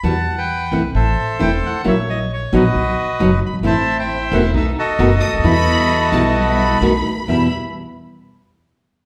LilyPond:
<<
  \new Staff \with { instrumentName = "Violin section" } { \time 4/4 \key e \minor \tempo 4 = 132 r1 | r1 | r2. r8 dis'''8 | b''4. a''8 b''2 |
b''8 r2. r8 | }
  \new Staff \with { instrumentName = "Bandoneon" } { \time 4/4 \key e \minor << { a''8. g''8. fis''8 e''4 g''8 fis''8 | e''8 dis''8 cis''8 dis''2 b''8 | a''8. g''8. fis''8 e''8 dis''4.~ | dis''2. r4 |
e''8 r2. r8 | } \\ { fis''8. b'4~ b'16 <a' c''>2 | cis''4. <fis' b'>2 r8 | <c'' e''>8. <c'' e''>4~ <c'' e''>16 a'8 <fis' a'>4.~ | <fis' a'>2. r4 |
r1 | } >> }
  \new Staff \with { instrumentName = "String section" } { \time 4/4 \key e \minor r1 | r1 | <a c' e'>4. <a c' e'>8 <a b dis'>8 r8 <a b dis'>8 r8 | <g b e'>4. <g b e'>4. <a b dis'>8 r8 |
<g b e'>8 r2. r8 | }
  \new Staff \with { instrumentName = "Nylon-string guitar" } { \time 4/4 \key e \minor <b, e g b fis'>8 r4 <e a c' e'>8 r4 <e a c' e'>8 r8 | <fis ais cis' e'>8 r4 <b, fis b dis' fis'>8 r4 <b, fis b dis' fis'>8 r8 | <e a c' e'>8 r4 <b, dis a b fis'>8 r4 <b, dis a b fis'>8 r8 | <b, e g b e'>8 r4 <b, e g b e'>8 r4 <b, dis a b fis'>8 r8 |
<e, b, e g b e'>8 r2. r8 | }
  \new Staff \with { instrumentName = "Upright bass" } { \clef bass \time 4/4 \key e \minor e,4~ e,16. r32 b,,16. r32 a,,16. r8 r32 e,,16. r8 r32 | ais,,4~ ais,,16. r32 ais,,16. r32 b,,16. r8 r32 fis,,16. r16 fis,,32 g,,32 gis,,32 | a,,4~ a,,16. r32 e,,16. r32 b,,16. r8 r32 fis,,16. r16 cis,32 d,32 dis,32 | e,4~ e,16. r32 b,,4~ b,,16. r32 b,,16. r8 r32 |
e,8 r2. r8 | }
>>